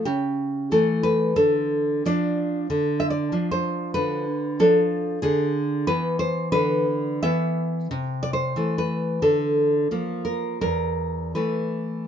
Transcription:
0, 0, Header, 1, 2, 480
1, 0, Start_track
1, 0, Tempo, 649351
1, 52, Time_signature, 4, 2, 24, 8
1, 1012, Tempo, 696056
1, 1492, Tempo, 636267
1, 4852, Tempo, 677966
1, 7252, Tempo, 722022
1, 8693, End_track
2, 0, Start_track
2, 0, Title_t, "Nylon-string guitar"
2, 0, Program_c, 0, 24
2, 40, Note_on_c, 0, 67, 73
2, 45, Note_on_c, 0, 49, 60
2, 508, Note_off_c, 0, 67, 0
2, 516, Note_off_c, 0, 49, 0
2, 529, Note_on_c, 0, 52, 37
2, 531, Note_on_c, 0, 69, 70
2, 533, Note_on_c, 0, 57, 41
2, 760, Note_off_c, 0, 69, 0
2, 764, Note_on_c, 0, 71, 74
2, 980, Note_off_c, 0, 52, 0
2, 982, Note_off_c, 0, 57, 0
2, 998, Note_off_c, 0, 71, 0
2, 1006, Note_on_c, 0, 50, 61
2, 1007, Note_on_c, 0, 69, 82
2, 1470, Note_off_c, 0, 69, 0
2, 1475, Note_off_c, 0, 50, 0
2, 1485, Note_on_c, 0, 53, 42
2, 1490, Note_on_c, 0, 74, 77
2, 1493, Note_on_c, 0, 62, 53
2, 1942, Note_off_c, 0, 53, 0
2, 1946, Note_off_c, 0, 62, 0
2, 1954, Note_off_c, 0, 74, 0
2, 1970, Note_on_c, 0, 50, 61
2, 2195, Note_on_c, 0, 76, 72
2, 2272, Note_off_c, 0, 76, 0
2, 2275, Note_on_c, 0, 74, 60
2, 2427, Note_off_c, 0, 50, 0
2, 2440, Note_on_c, 0, 53, 42
2, 2443, Note_on_c, 0, 62, 46
2, 2582, Note_off_c, 0, 74, 0
2, 2585, Note_on_c, 0, 72, 67
2, 2901, Note_off_c, 0, 72, 0
2, 2907, Note_on_c, 0, 71, 74
2, 2915, Note_on_c, 0, 50, 58
2, 3133, Note_off_c, 0, 53, 0
2, 3135, Note_off_c, 0, 62, 0
2, 3378, Note_off_c, 0, 71, 0
2, 3386, Note_off_c, 0, 50, 0
2, 3401, Note_on_c, 0, 53, 52
2, 3404, Note_on_c, 0, 69, 76
2, 3407, Note_on_c, 0, 62, 56
2, 3842, Note_off_c, 0, 53, 0
2, 3845, Note_off_c, 0, 62, 0
2, 3854, Note_off_c, 0, 69, 0
2, 3873, Note_on_c, 0, 68, 81
2, 3879, Note_on_c, 0, 50, 65
2, 4338, Note_off_c, 0, 68, 0
2, 4346, Note_off_c, 0, 50, 0
2, 4364, Note_on_c, 0, 71, 77
2, 4367, Note_on_c, 0, 52, 45
2, 4372, Note_on_c, 0, 59, 52
2, 4598, Note_off_c, 0, 71, 0
2, 4605, Note_on_c, 0, 72, 86
2, 4844, Note_off_c, 0, 72, 0
2, 4853, Note_on_c, 0, 71, 87
2, 4858, Note_on_c, 0, 50, 54
2, 5076, Note_off_c, 0, 52, 0
2, 5078, Note_off_c, 0, 59, 0
2, 5331, Note_off_c, 0, 71, 0
2, 5338, Note_off_c, 0, 50, 0
2, 5352, Note_on_c, 0, 76, 86
2, 5355, Note_on_c, 0, 52, 47
2, 5359, Note_on_c, 0, 59, 53
2, 5804, Note_off_c, 0, 52, 0
2, 5804, Note_off_c, 0, 59, 0
2, 5812, Note_off_c, 0, 76, 0
2, 5836, Note_on_c, 0, 48, 60
2, 6061, Note_on_c, 0, 74, 79
2, 6133, Note_off_c, 0, 74, 0
2, 6136, Note_on_c, 0, 72, 67
2, 6287, Note_off_c, 0, 48, 0
2, 6298, Note_on_c, 0, 52, 44
2, 6302, Note_on_c, 0, 57, 46
2, 6437, Note_off_c, 0, 72, 0
2, 6454, Note_on_c, 0, 71, 69
2, 6742, Note_off_c, 0, 52, 0
2, 6744, Note_off_c, 0, 57, 0
2, 6758, Note_off_c, 0, 71, 0
2, 6765, Note_on_c, 0, 50, 59
2, 6767, Note_on_c, 0, 69, 74
2, 7237, Note_off_c, 0, 50, 0
2, 7253, Note_on_c, 0, 53, 38
2, 7256, Note_on_c, 0, 58, 49
2, 7459, Note_off_c, 0, 69, 0
2, 7477, Note_on_c, 0, 70, 64
2, 7701, Note_off_c, 0, 53, 0
2, 7702, Note_off_c, 0, 58, 0
2, 7713, Note_off_c, 0, 70, 0
2, 7720, Note_on_c, 0, 70, 80
2, 7721, Note_on_c, 0, 40, 60
2, 8192, Note_off_c, 0, 70, 0
2, 8198, Note_off_c, 0, 40, 0
2, 8210, Note_on_c, 0, 71, 50
2, 8213, Note_on_c, 0, 52, 41
2, 8217, Note_on_c, 0, 57, 42
2, 8667, Note_off_c, 0, 52, 0
2, 8668, Note_off_c, 0, 57, 0
2, 8693, Note_off_c, 0, 71, 0
2, 8693, End_track
0, 0, End_of_file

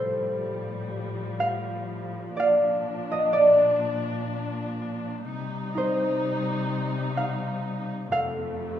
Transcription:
0, 0, Header, 1, 3, 480
1, 0, Start_track
1, 0, Tempo, 988468
1, 1139, Time_signature, 3, 2, 24, 8
1, 1140, Tempo, 963082
1, 4354, End_track
2, 0, Start_track
2, 0, Title_t, "Harp"
2, 0, Program_c, 0, 46
2, 0, Note_on_c, 0, 67, 41
2, 0, Note_on_c, 0, 69, 48
2, 0, Note_on_c, 0, 72, 68
2, 90, Note_off_c, 0, 67, 0
2, 679, Note_on_c, 0, 77, 85
2, 908, Note_off_c, 0, 72, 0
2, 1009, Note_off_c, 0, 69, 0
2, 1149, Note_on_c, 0, 74, 59
2, 1162, Note_off_c, 0, 77, 0
2, 1164, Note_on_c, 0, 77, 87
2, 1523, Note_on_c, 0, 75, 81
2, 1627, Note_off_c, 0, 74, 0
2, 1629, Note_on_c, 0, 74, 76
2, 1659, Note_off_c, 0, 75, 0
2, 1994, Note_off_c, 0, 77, 0
2, 2549, Note_off_c, 0, 74, 0
2, 2834, Note_on_c, 0, 63, 56
2, 2848, Note_on_c, 0, 72, 77
2, 3545, Note_on_c, 0, 77, 82
2, 3835, Note_off_c, 0, 72, 0
2, 4014, Note_on_c, 0, 69, 55
2, 4015, Note_off_c, 0, 77, 0
2, 4017, Note_on_c, 0, 77, 83
2, 4182, Note_off_c, 0, 63, 0
2, 4354, Note_off_c, 0, 69, 0
2, 4354, Note_off_c, 0, 77, 0
2, 4354, End_track
3, 0, Start_track
3, 0, Title_t, "String section"
3, 0, Program_c, 1, 48
3, 0, Note_on_c, 1, 45, 57
3, 0, Note_on_c, 1, 53, 51
3, 0, Note_on_c, 1, 55, 68
3, 1123, Note_off_c, 1, 45, 0
3, 1123, Note_off_c, 1, 55, 0
3, 1140, Note_on_c, 1, 46, 68
3, 1141, Note_on_c, 1, 62, 71
3, 2563, Note_off_c, 1, 53, 0
3, 2571, Note_off_c, 1, 46, 0
3, 2572, Note_off_c, 1, 62, 0
3, 2584, Note_on_c, 1, 48, 69
3, 2590, Note_on_c, 1, 63, 82
3, 2591, Note_on_c, 1, 55, 59
3, 3999, Note_off_c, 1, 48, 0
3, 4002, Note_off_c, 1, 55, 0
3, 4002, Note_off_c, 1, 63, 0
3, 4013, Note_on_c, 1, 41, 73
3, 4014, Note_on_c, 1, 57, 67
3, 4022, Note_on_c, 1, 48, 63
3, 4354, Note_off_c, 1, 41, 0
3, 4354, Note_off_c, 1, 48, 0
3, 4354, Note_off_c, 1, 57, 0
3, 4354, End_track
0, 0, End_of_file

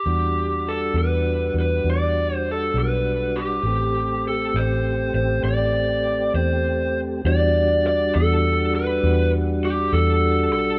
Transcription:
0, 0, Header, 1, 4, 480
1, 0, Start_track
1, 0, Key_signature, 1, "minor"
1, 0, Tempo, 598802
1, 44, Time_signature, 12, 3, 24, 8
1, 8648, End_track
2, 0, Start_track
2, 0, Title_t, "Lead electric guitar"
2, 0, Program_c, 0, 29
2, 0, Note_on_c, 0, 67, 64
2, 550, Note_on_c, 0, 69, 69
2, 563, Note_off_c, 0, 67, 0
2, 785, Note_off_c, 0, 69, 0
2, 789, Note_on_c, 0, 71, 69
2, 1226, Note_off_c, 0, 71, 0
2, 1285, Note_on_c, 0, 71, 68
2, 1513, Note_off_c, 0, 71, 0
2, 1521, Note_on_c, 0, 74, 69
2, 1890, Note_off_c, 0, 74, 0
2, 1890, Note_on_c, 0, 72, 69
2, 1999, Note_off_c, 0, 72, 0
2, 2016, Note_on_c, 0, 69, 67
2, 2235, Note_off_c, 0, 69, 0
2, 2238, Note_on_c, 0, 71, 68
2, 2697, Note_on_c, 0, 67, 61
2, 2718, Note_off_c, 0, 71, 0
2, 3426, Note_off_c, 0, 67, 0
2, 3429, Note_on_c, 0, 69, 68
2, 3656, Note_on_c, 0, 72, 71
2, 3667, Note_off_c, 0, 69, 0
2, 4102, Note_off_c, 0, 72, 0
2, 4129, Note_on_c, 0, 72, 77
2, 4361, Note_off_c, 0, 72, 0
2, 4364, Note_on_c, 0, 74, 77
2, 5089, Note_off_c, 0, 74, 0
2, 5092, Note_on_c, 0, 72, 69
2, 5600, Note_off_c, 0, 72, 0
2, 5826, Note_on_c, 0, 74, 95
2, 6299, Note_off_c, 0, 74, 0
2, 6308, Note_on_c, 0, 74, 84
2, 6523, Note_off_c, 0, 74, 0
2, 6531, Note_on_c, 0, 69, 76
2, 7012, Note_off_c, 0, 69, 0
2, 7015, Note_on_c, 0, 71, 80
2, 7459, Note_off_c, 0, 71, 0
2, 7735, Note_on_c, 0, 67, 56
2, 7958, Note_on_c, 0, 69, 62
2, 7978, Note_off_c, 0, 67, 0
2, 8429, Note_off_c, 0, 69, 0
2, 8439, Note_on_c, 0, 69, 74
2, 8648, Note_off_c, 0, 69, 0
2, 8648, End_track
3, 0, Start_track
3, 0, Title_t, "Tonewheel organ"
3, 0, Program_c, 1, 16
3, 51, Note_on_c, 1, 62, 44
3, 52, Note_on_c, 1, 55, 46
3, 55, Note_on_c, 1, 66, 46
3, 2905, Note_off_c, 1, 55, 0
3, 2905, Note_off_c, 1, 62, 0
3, 2907, Note_off_c, 1, 66, 0
3, 2928, Note_on_c, 1, 57, 48
3, 2937, Note_on_c, 1, 67, 46
3, 2941, Note_on_c, 1, 60, 47
3, 5782, Note_off_c, 1, 57, 0
3, 5786, Note_off_c, 1, 67, 0
3, 5788, Note_off_c, 1, 60, 0
3, 5812, Note_on_c, 1, 55, 54
3, 5812, Note_on_c, 1, 62, 52
3, 5816, Note_on_c, 1, 66, 58
3, 8648, Note_off_c, 1, 55, 0
3, 8648, Note_off_c, 1, 62, 0
3, 8648, Note_off_c, 1, 66, 0
3, 8648, End_track
4, 0, Start_track
4, 0, Title_t, "Fingered electric bass"
4, 0, Program_c, 2, 33
4, 46, Note_on_c, 2, 40, 65
4, 735, Note_off_c, 2, 40, 0
4, 755, Note_on_c, 2, 40, 87
4, 1209, Note_off_c, 2, 40, 0
4, 1235, Note_on_c, 2, 40, 58
4, 1462, Note_off_c, 2, 40, 0
4, 1476, Note_on_c, 2, 40, 65
4, 2171, Note_off_c, 2, 40, 0
4, 2196, Note_on_c, 2, 35, 66
4, 2892, Note_off_c, 2, 35, 0
4, 2912, Note_on_c, 2, 33, 63
4, 3610, Note_off_c, 2, 33, 0
4, 3640, Note_on_c, 2, 33, 88
4, 4094, Note_off_c, 2, 33, 0
4, 4120, Note_on_c, 2, 33, 71
4, 4346, Note_off_c, 2, 33, 0
4, 4356, Note_on_c, 2, 33, 69
4, 5052, Note_off_c, 2, 33, 0
4, 5082, Note_on_c, 2, 40, 66
4, 5775, Note_off_c, 2, 40, 0
4, 5810, Note_on_c, 2, 40, 91
4, 6498, Note_off_c, 2, 40, 0
4, 6538, Note_on_c, 2, 40, 90
4, 7221, Note_off_c, 2, 40, 0
4, 7242, Note_on_c, 2, 40, 92
4, 7931, Note_off_c, 2, 40, 0
4, 7956, Note_on_c, 2, 40, 85
4, 8444, Note_off_c, 2, 40, 0
4, 8444, Note_on_c, 2, 35, 75
4, 8648, Note_off_c, 2, 35, 0
4, 8648, End_track
0, 0, End_of_file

